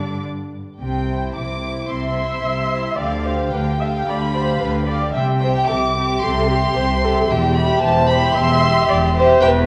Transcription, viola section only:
Already playing: D4
1.89 E5
2.98 D5
3.26 C5
3.53 B4
3.80 E5
4.08 D5
4.35 C5
4.62 B4
4.88 D5
5.15 E5
5.42 C5
5.69 A4
5.95 G4
6.23 A4
6.49 G4
6.76 C5
7.03 A4
7.30 G4
7.83 C5
8.37 E5
8.89 D5
9.16 C5
9.43 B4

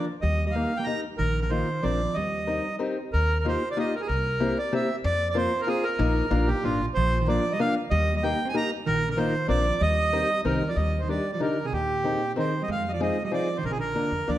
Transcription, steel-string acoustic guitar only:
0.55 A#3 D#4 G4 A#4
0.86 A#3 D#4 G4 A#4
1.51 A#3 D#4 F4 A#4
1.83 C4 D4 F4 A#4
2.47 C4 D#4 G4 A#4
2.79 C4 D#4 G4 A#4
3.45 A#3 D#4 F4 G4
3.77 A#3 D#4 F4 G4
4.40 A#3 C4 E4 G4
4.73 A#3 C4 E4 G4
5.34 A#3 C4 F4 A#4
5.67 A#3 C4 F4 A#4
5.99 A#3 D#4 F4 A#4
6.31 A#3 D4 F4 A#4
6.64 A#3 D4 F4 A#4
7.27 A#3 D4 F4 A#4
7.59 A#3 D4 F4 A#4
8.23 A#3 D#4 G4 A#4
8.54 A#3 D#4 G4 A#4
9.17 A#3 D#4 F4 A#4
9.48 C4 D4 F4 A#4
10.13 C4 D#4 G4 A#4
10.45 C4 D#4 G4 A#4
11.09 D4 D#4 G4 A#4
11.40 D4 D#4 G4 A#4
12.04 C4 D#4 G#4 A#4
12.36 C4 D#4 G#4 A#4
13.00 C4 D#4 F4 G#4
13.31 C4 D#4 F4 G#4
13.95 A#3 D4 F4 A#4
14.27 A#3 D4 F4 A#4

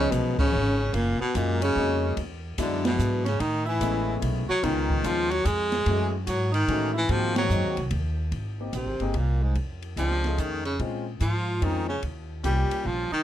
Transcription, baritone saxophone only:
Already playing: C#3
0.12 B2
0.39 C#3
0.95 A#2
1.21 B2
1.36 A#2
1.64 C#3
2.60 D3
2.86 B2
3.28 C#3
3.41 D#3
3.68 E3
4.50 F#3
4.64 D#3
5.06 F3
5.31 F#3
5.46 G#3
6.29 F#3
6.54 D#3
6.97 E3
7.11 F3
7.38 F#3
8.75 C3
9.17 A#2
9.44 G#2
9.99 F3
10.40 D#3
10.66 C#3
11.21 F3
11.63 D#3
11.89 C#3
12.45 G3
12.86 F3
13.13 D#3

